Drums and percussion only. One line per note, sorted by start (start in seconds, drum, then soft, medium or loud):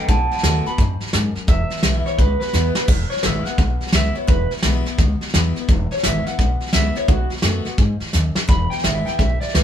0.08 kick loud
0.08 snare soft
0.31 snare soft
0.38 snare soft
0.43 snare loud
0.43 hi-hat pedal medium
0.66 snare soft
0.78 kick loud
0.78 snare soft
1.00 snare soft
1.06 snare soft
1.13 snare loud
1.13 hi-hat pedal medium
1.35 snare soft
1.47 kick loud
1.47 snare soft
1.70 snare soft
1.76 snare soft
1.83 snare loud
1.83 hi-hat pedal medium
2.06 snare soft
2.19 kick loud
2.19 snare soft
2.41 snare soft
2.47 snare soft
2.53 snare medium
2.53 hi-hat pedal medium
2.75 snare medium
2.88 kick loud
2.88 snare soft
2.88 crash loud
3.11 snare soft
3.17 snare soft
3.23 snare loud
3.23 hi-hat pedal medium
3.45 snare soft
3.58 kick loud
3.58 snare soft
3.81 snare soft
3.87 snare soft
3.92 snare loud
3.92 hi-hat pedal medium
4.15 snare soft
4.28 kick loud
4.28 snare soft
4.51 snare soft
4.57 snare soft
4.62 snare loud
4.62 hi-hat pedal medium
4.85 snare soft
4.98 kick loud
4.98 snare soft
5.21 snare soft
5.28 snare soft
5.34 snare loud
5.34 hi-hat pedal medium
5.56 snare soft
5.68 kick loud
5.68 snare soft
5.91 snare soft
5.97 snare soft
6.03 snare loud
6.03 hi-hat pedal medium
6.26 snare soft
6.39 kick loud
6.39 snare soft
6.61 snare soft
6.66 snare soft
6.73 snare loud
6.73 hi-hat pedal medium
6.95 snare soft
7.08 kick loud
7.08 snare soft
7.30 snare soft
7.37 snare soft
7.42 snare loud
7.42 hi-hat pedal medium
7.65 snare soft
7.78 kick loud
7.78 snare soft
8.00 snare soft
8.07 snare soft
8.13 snare medium
8.13 hi-hat pedal medium
8.35 snare medium
8.48 kick loud
8.48 snare soft
8.71 snare soft
8.78 snare soft
8.84 snare loud
8.84 hi-hat pedal medium
9.07 snare soft
9.19 kick loud
9.19 snare soft
9.41 snare soft
9.48 snare soft
9.55 snare loud
9.55 hi-hat pedal medium